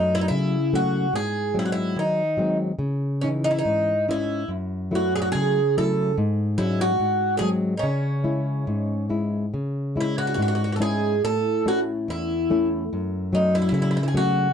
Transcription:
Already playing: F#2 F#3 A3 C#4 D#4
0.15 E4
0.21 D#4
0.28 C#3 E4
0.73 F#3 A3 C#4 F#4
1.13 G#2 G#4
1.54 F#3 G#3 C4
1.59 E4
1.65 F#4
1.72 E4
1.96 D#3 D#4
2.37 F#3 G#3 C4
2.79 C#3
3.21 E3 C#4 D#4
3.44 D#4
3.51 E4
3.59 D#4
3.65 G#2
4.08 C#4 E4 D#5
4.48 F#2
4.91 F#3 A3 E4
4.95 F#4
5.16 G#4
5.22 F#4
5.32 C#3 G#4
5.77 F#3 A3 E4 A4
6.18 G#2
6.58 F#3 G#3 C#4 E4
6.81 F#4
7.00 G#2
7.37 F#3 G#4 A4
7.41 G#3 C4
7.77 C#4 D#4
7.83 C#3
8.24 G#3 C#4 E4
8.67 G#2
9.09 G#3 C#4 E4
9.54 C#3
9.96 G#3 C#4 E4
10.00 E4
10.18 F#4
10.27 F#4
10.34 G#2 F#4
10.42 F#4
10.48 F#4
10.55 F#4
10.64 F#4
10.72 F#4 A4
10.80 G#3 C#4 E4 G#4
11.24 A2 A4
11.66 A3 C#4 E4 F#4
12.08 E2 E4
12.50 A3 C#4 E4
12.93 F#2
13.33 F#3 A3 C#4 D#4
13.55 E4
13.62 E4
13.69 C#3 E4
13.74 E4
13.82 E4
13.91 E4
13.97 E4
14.03 E4
14.08 G#4
14.14 F#3 A3 C#4 F#4

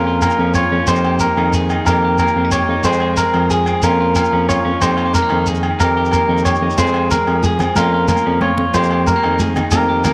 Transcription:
Already playing: F2 A#3 C#4 A#4
0.07 F4
0.21 A#3 A#4, low agogo, shekere
0.30 shekere
0.38 F2 F3 C#4
0.54 F4 C#5, low agogo, shekere
0.71 F2 C#4
0.87 F2 A#3 D#4 G4 C5, low agogo, shekere
0.96 shekere
1.05 G4, low agogo
1.19 A#3 A#4, shekere
1.37 F2 D#3 D#4, low agogo
1.53 G#4, shekere
1.69 D#4, low agogo, shekere
1.86 F2 A#3 D#4 G4 A#4, low agogo, shekere
2.04 G4
2.18 A#3 A#4, low agogo, shekere
2.27 shekere
2.36 F2 C4, muted clean electric guitar stroke
2.45 D#4
2.51 G4 C#5, low agogo, shekere
2.68 F2 D#4
2.84 F2 G#3 C4 G#4 C5, low agogo, shekere
2.92 shekere
3.00 G#4, low agogo
3.17 G#3 A#4, shekere
3.33 F2 F3 C4, low agogo
3.50 G#4, shekere
3.66 C4, low agogo, shekere
3.82 F2 A#3 C#4 F4 A#4, low agogo, shekere
4.01 F4
4.15 A#3 A#4, low agogo, shekere
4.24 shekere
4.33 F2 F3 C#4
4.48 F4 C#5, low agogo, shekere
4.65 F2 C#4
4.80 F2 A#3 D#4 G4 C5, low agogo, shekere
4.97 F4, low agogo
5.05 G4
5.13 G#3 A#4, shekere
5.22 A#3
5.29 F2 D#3 D#4, low agogo
5.46 G#4, shekere
5.55 shekere
5.63 low agogo
5.71 D#4
5.80 F2 D#4 G4 A#4, muted clean electric guitar stroke, low agogo, shekere
5.97 G4
6.05 shekere
6.11 A#3 A#4, low agogo, shekere
6.29 F2 D#3 D#4
6.38 shekere
6.45 G4 C#5, low agogo, shekere
6.55 shekere
6.62 F2 D#4
6.70 shekere
6.78 F2 G#3 C4 G#4 C5, high conga, low agogo, shekere
6.87 shekere
6.94 G#4, low agogo
7.11 G#3 A#4, high conga, low conga, shekere
7.27 F2 F3, muted clean electric guitar stroke, low agogo
7.43 G#4, high conga, shekere
7.59 C4, low conga, low agogo, shekere
7.68 low conga
7.76 F2 A#3 C#4 F4 A#4, high conga, low agogo, shekere
7.84 low conga
7.94 F4
8.08 A#3 A#4, high conga, low conga, low agogo, shekere
8.17 shekere
8.26 F2 F3 C#4
8.34 low conga
8.41 F4 C#5, high conga, low conga, low agogo
8.49 low conga
8.58 F2, muted clean electric guitar stroke, low conga
8.74 F2 A#3 G4 C5, muted clean electric guitar stroke, high conga, low agogo, shekere
8.83 low conga, shekere
8.91 G4, low agogo
9.07 G#3 A#4, high conga, shekere
9.16 A#3
9.23 F2 D#3 D#4, low agogo
9.39 G#4, high conga, shekere
9.56 D#4, low conga, low agogo, shekere
9.71 F2 A#3 D#4 G4 A#4, high conga, low agogo, shekere
9.81 low conga
9.89 G4
10.04 A#3 A#4, high conga, low conga, low agogo, shekere

